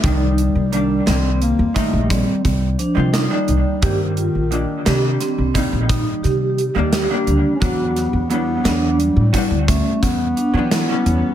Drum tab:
HH |xxxxxxxxxxx|xxxxxxxxxxx|xxxxxxxxxxx|
SD |---o-----o-|---oo--o-o-|-o-o-o---o-|
BD |o----ooo---|o----oo----|o----ooo---|